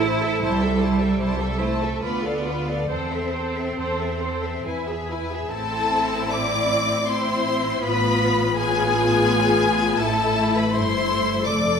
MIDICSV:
0, 0, Header, 1, 6, 480
1, 0, Start_track
1, 0, Key_signature, 0, "minor"
1, 0, Tempo, 777202
1, 259, Time_signature, 3, 2, 24, 8
1, 740, Tempo, 827586
1, 1220, Tempo, 870827
1, 3140, Tempo, 810811
1, 3620, Tempo, 748130
1, 5060, Tempo, 724638
1, 7201, End_track
2, 0, Start_track
2, 0, Title_t, "Violin section"
2, 0, Program_c, 0, 48
2, 21, Note_on_c, 0, 81, 48
2, 140, Note_off_c, 0, 81, 0
2, 148, Note_on_c, 0, 76, 51
2, 263, Note_off_c, 0, 76, 0
2, 265, Note_on_c, 0, 81, 51
2, 373, Note_off_c, 0, 81, 0
2, 383, Note_on_c, 0, 76, 48
2, 500, Note_off_c, 0, 76, 0
2, 504, Note_on_c, 0, 81, 46
2, 621, Note_off_c, 0, 81, 0
2, 626, Note_on_c, 0, 76, 41
2, 744, Note_off_c, 0, 76, 0
2, 748, Note_on_c, 0, 81, 48
2, 853, Note_off_c, 0, 81, 0
2, 864, Note_on_c, 0, 76, 42
2, 980, Note_off_c, 0, 76, 0
2, 981, Note_on_c, 0, 81, 46
2, 1100, Note_off_c, 0, 81, 0
2, 1106, Note_on_c, 0, 76, 39
2, 1224, Note_off_c, 0, 76, 0
2, 1225, Note_on_c, 0, 74, 39
2, 1332, Note_off_c, 0, 74, 0
2, 1343, Note_on_c, 0, 77, 36
2, 1454, Note_on_c, 0, 74, 36
2, 1459, Note_off_c, 0, 77, 0
2, 1575, Note_off_c, 0, 74, 0
2, 1575, Note_on_c, 0, 77, 39
2, 1694, Note_on_c, 0, 72, 37
2, 1697, Note_off_c, 0, 77, 0
2, 1809, Note_off_c, 0, 72, 0
2, 1818, Note_on_c, 0, 76, 34
2, 1935, Note_on_c, 0, 72, 35
2, 1940, Note_off_c, 0, 76, 0
2, 2054, Note_on_c, 0, 76, 32
2, 2059, Note_off_c, 0, 72, 0
2, 2176, Note_on_c, 0, 72, 38
2, 2179, Note_off_c, 0, 76, 0
2, 2292, Note_off_c, 0, 72, 0
2, 2298, Note_on_c, 0, 76, 35
2, 2422, Note_off_c, 0, 76, 0
2, 2422, Note_on_c, 0, 72, 39
2, 2544, Note_on_c, 0, 76, 35
2, 2545, Note_off_c, 0, 72, 0
2, 2665, Note_off_c, 0, 76, 0
2, 2669, Note_on_c, 0, 80, 37
2, 2779, Note_off_c, 0, 80, 0
2, 2788, Note_on_c, 0, 76, 33
2, 2909, Note_off_c, 0, 76, 0
2, 2918, Note_on_c, 0, 80, 34
2, 3032, Note_on_c, 0, 76, 40
2, 3033, Note_off_c, 0, 80, 0
2, 3143, Note_off_c, 0, 76, 0
2, 3147, Note_on_c, 0, 81, 67
2, 3600, Note_off_c, 0, 81, 0
2, 3619, Note_on_c, 0, 86, 71
2, 4105, Note_off_c, 0, 86, 0
2, 4116, Note_on_c, 0, 84, 67
2, 4590, Note_off_c, 0, 84, 0
2, 4590, Note_on_c, 0, 83, 78
2, 5053, Note_off_c, 0, 83, 0
2, 5068, Note_on_c, 0, 80, 85
2, 6001, Note_off_c, 0, 80, 0
2, 6016, Note_on_c, 0, 81, 75
2, 6376, Note_off_c, 0, 81, 0
2, 6382, Note_on_c, 0, 83, 62
2, 6493, Note_on_c, 0, 84, 78
2, 6498, Note_off_c, 0, 83, 0
2, 6974, Note_off_c, 0, 84, 0
2, 6979, Note_on_c, 0, 86, 67
2, 7201, Note_off_c, 0, 86, 0
2, 7201, End_track
3, 0, Start_track
3, 0, Title_t, "Violin section"
3, 0, Program_c, 1, 48
3, 18, Note_on_c, 1, 72, 53
3, 136, Note_on_c, 1, 69, 47
3, 138, Note_off_c, 1, 72, 0
3, 250, Note_on_c, 1, 72, 54
3, 257, Note_off_c, 1, 69, 0
3, 366, Note_off_c, 1, 72, 0
3, 375, Note_on_c, 1, 69, 47
3, 496, Note_off_c, 1, 69, 0
3, 496, Note_on_c, 1, 72, 41
3, 617, Note_off_c, 1, 72, 0
3, 617, Note_on_c, 1, 69, 43
3, 739, Note_off_c, 1, 69, 0
3, 741, Note_on_c, 1, 72, 41
3, 849, Note_off_c, 1, 72, 0
3, 857, Note_on_c, 1, 69, 44
3, 976, Note_off_c, 1, 69, 0
3, 982, Note_on_c, 1, 72, 43
3, 1100, Note_off_c, 1, 72, 0
3, 1106, Note_on_c, 1, 69, 41
3, 1220, Note_on_c, 1, 71, 43
3, 1224, Note_off_c, 1, 69, 0
3, 1330, Note_off_c, 1, 71, 0
3, 1347, Note_on_c, 1, 74, 37
3, 1461, Note_off_c, 1, 74, 0
3, 1466, Note_on_c, 1, 71, 34
3, 1581, Note_off_c, 1, 71, 0
3, 1590, Note_on_c, 1, 74, 36
3, 1704, Note_off_c, 1, 74, 0
3, 1709, Note_on_c, 1, 69, 41
3, 1816, Note_off_c, 1, 69, 0
3, 1828, Note_on_c, 1, 72, 37
3, 1945, Note_off_c, 1, 72, 0
3, 1955, Note_on_c, 1, 69, 34
3, 2069, Note_off_c, 1, 69, 0
3, 2075, Note_on_c, 1, 72, 36
3, 2190, Note_off_c, 1, 72, 0
3, 2198, Note_on_c, 1, 69, 32
3, 2304, Note_off_c, 1, 69, 0
3, 2319, Note_on_c, 1, 72, 31
3, 2433, Note_off_c, 1, 72, 0
3, 2442, Note_on_c, 1, 69, 35
3, 2555, Note_off_c, 1, 69, 0
3, 2562, Note_on_c, 1, 72, 31
3, 2674, Note_off_c, 1, 72, 0
3, 2681, Note_on_c, 1, 71, 32
3, 2786, Note_off_c, 1, 71, 0
3, 2799, Note_on_c, 1, 68, 32
3, 2915, Note_off_c, 1, 68, 0
3, 2921, Note_on_c, 1, 71, 36
3, 3034, Note_off_c, 1, 71, 0
3, 3043, Note_on_c, 1, 68, 36
3, 3149, Note_off_c, 1, 68, 0
3, 3151, Note_on_c, 1, 69, 60
3, 3602, Note_off_c, 1, 69, 0
3, 3631, Note_on_c, 1, 74, 59
3, 4111, Note_off_c, 1, 74, 0
3, 4121, Note_on_c, 1, 72, 55
3, 4591, Note_on_c, 1, 71, 65
3, 4593, Note_off_c, 1, 72, 0
3, 5054, Note_off_c, 1, 71, 0
3, 5065, Note_on_c, 1, 68, 70
3, 6000, Note_off_c, 1, 68, 0
3, 6013, Note_on_c, 1, 69, 60
3, 6367, Note_off_c, 1, 69, 0
3, 6379, Note_on_c, 1, 71, 56
3, 6491, Note_on_c, 1, 72, 60
3, 6496, Note_off_c, 1, 71, 0
3, 6973, Note_off_c, 1, 72, 0
3, 6973, Note_on_c, 1, 74, 54
3, 7201, Note_off_c, 1, 74, 0
3, 7201, End_track
4, 0, Start_track
4, 0, Title_t, "Viola section"
4, 0, Program_c, 2, 48
4, 23, Note_on_c, 2, 64, 49
4, 141, Note_off_c, 2, 64, 0
4, 146, Note_on_c, 2, 69, 45
4, 262, Note_off_c, 2, 69, 0
4, 265, Note_on_c, 2, 64, 54
4, 373, Note_off_c, 2, 64, 0
4, 388, Note_on_c, 2, 69, 49
4, 498, Note_on_c, 2, 64, 47
4, 503, Note_off_c, 2, 69, 0
4, 616, Note_on_c, 2, 69, 41
4, 618, Note_off_c, 2, 64, 0
4, 739, Note_off_c, 2, 69, 0
4, 739, Note_on_c, 2, 64, 47
4, 848, Note_off_c, 2, 64, 0
4, 856, Note_on_c, 2, 69, 44
4, 976, Note_off_c, 2, 69, 0
4, 977, Note_on_c, 2, 64, 40
4, 1098, Note_off_c, 2, 64, 0
4, 1098, Note_on_c, 2, 69, 42
4, 1219, Note_on_c, 2, 65, 39
4, 1221, Note_off_c, 2, 69, 0
4, 1329, Note_off_c, 2, 65, 0
4, 1338, Note_on_c, 2, 69, 39
4, 1456, Note_off_c, 2, 69, 0
4, 1457, Note_on_c, 2, 65, 37
4, 1576, Note_off_c, 2, 65, 0
4, 1577, Note_on_c, 2, 69, 36
4, 1694, Note_on_c, 2, 72, 38
4, 1698, Note_off_c, 2, 69, 0
4, 1809, Note_off_c, 2, 72, 0
4, 1820, Note_on_c, 2, 69, 37
4, 1941, Note_off_c, 2, 69, 0
4, 1944, Note_on_c, 2, 72, 33
4, 2063, Note_off_c, 2, 72, 0
4, 2064, Note_on_c, 2, 69, 31
4, 2184, Note_off_c, 2, 69, 0
4, 2186, Note_on_c, 2, 72, 37
4, 2297, Note_off_c, 2, 72, 0
4, 2303, Note_on_c, 2, 69, 37
4, 2425, Note_off_c, 2, 69, 0
4, 2428, Note_on_c, 2, 72, 36
4, 2547, Note_off_c, 2, 72, 0
4, 2552, Note_on_c, 2, 69, 33
4, 2669, Note_off_c, 2, 69, 0
4, 2671, Note_on_c, 2, 64, 35
4, 2781, Note_off_c, 2, 64, 0
4, 2794, Note_on_c, 2, 68, 35
4, 2912, Note_off_c, 2, 68, 0
4, 2920, Note_on_c, 2, 64, 34
4, 3033, Note_off_c, 2, 64, 0
4, 3037, Note_on_c, 2, 68, 32
4, 3146, Note_off_c, 2, 68, 0
4, 3150, Note_on_c, 2, 60, 51
4, 3150, Note_on_c, 2, 64, 50
4, 4085, Note_off_c, 2, 60, 0
4, 4085, Note_off_c, 2, 64, 0
4, 4108, Note_on_c, 2, 64, 46
4, 4110, Note_on_c, 2, 60, 48
4, 4576, Note_off_c, 2, 64, 0
4, 4577, Note_off_c, 2, 60, 0
4, 4588, Note_on_c, 2, 59, 57
4, 4589, Note_on_c, 2, 65, 54
4, 5052, Note_off_c, 2, 59, 0
4, 5060, Note_off_c, 2, 65, 0
4, 5067, Note_on_c, 2, 65, 62
4, 5069, Note_on_c, 2, 59, 66
4, 6001, Note_off_c, 2, 65, 0
4, 6002, Note_off_c, 2, 59, 0
4, 6019, Note_on_c, 2, 64, 57
4, 6020, Note_on_c, 2, 57, 56
4, 6490, Note_off_c, 2, 64, 0
4, 6491, Note_off_c, 2, 57, 0
4, 6498, Note_on_c, 2, 64, 50
4, 6499, Note_on_c, 2, 57, 54
4, 6965, Note_off_c, 2, 57, 0
4, 6967, Note_off_c, 2, 64, 0
4, 6973, Note_on_c, 2, 57, 41
4, 6973, Note_on_c, 2, 69, 44
4, 7201, Note_off_c, 2, 57, 0
4, 7201, Note_off_c, 2, 69, 0
4, 7201, End_track
5, 0, Start_track
5, 0, Title_t, "Cello section"
5, 0, Program_c, 3, 48
5, 0, Note_on_c, 3, 64, 88
5, 246, Note_off_c, 3, 64, 0
5, 256, Note_on_c, 3, 55, 85
5, 975, Note_off_c, 3, 55, 0
5, 976, Note_on_c, 3, 57, 64
5, 1220, Note_off_c, 3, 57, 0
5, 1222, Note_on_c, 3, 59, 64
5, 1698, Note_off_c, 3, 59, 0
5, 1700, Note_on_c, 3, 60, 60
5, 2648, Note_off_c, 3, 60, 0
5, 3147, Note_on_c, 3, 45, 49
5, 4563, Note_off_c, 3, 45, 0
5, 4592, Note_on_c, 3, 45, 66
5, 5994, Note_off_c, 3, 45, 0
5, 6019, Note_on_c, 3, 45, 61
5, 6487, Note_off_c, 3, 45, 0
5, 6493, Note_on_c, 3, 43, 52
5, 6970, Note_on_c, 3, 41, 44
5, 6974, Note_off_c, 3, 43, 0
5, 7201, Note_off_c, 3, 41, 0
5, 7201, End_track
6, 0, Start_track
6, 0, Title_t, "Double bass section"
6, 0, Program_c, 4, 48
6, 0, Note_on_c, 4, 33, 63
6, 201, Note_off_c, 4, 33, 0
6, 255, Note_on_c, 4, 36, 67
6, 681, Note_off_c, 4, 36, 0
6, 739, Note_on_c, 4, 36, 57
6, 1162, Note_off_c, 4, 36, 0
6, 1216, Note_on_c, 4, 38, 51
6, 1638, Note_off_c, 4, 38, 0
6, 1698, Note_on_c, 4, 40, 43
6, 2126, Note_off_c, 4, 40, 0
6, 2180, Note_on_c, 4, 40, 45
6, 2608, Note_off_c, 4, 40, 0
6, 2665, Note_on_c, 4, 40, 44
6, 3087, Note_off_c, 4, 40, 0
6, 3142, Note_on_c, 4, 33, 48
6, 4560, Note_off_c, 4, 33, 0
6, 4593, Note_on_c, 4, 33, 65
6, 5994, Note_off_c, 4, 33, 0
6, 6023, Note_on_c, 4, 33, 58
6, 6489, Note_off_c, 4, 33, 0
6, 6501, Note_on_c, 4, 31, 50
6, 6977, Note_on_c, 4, 29, 45
6, 6978, Note_off_c, 4, 31, 0
6, 7201, Note_off_c, 4, 29, 0
6, 7201, End_track
0, 0, End_of_file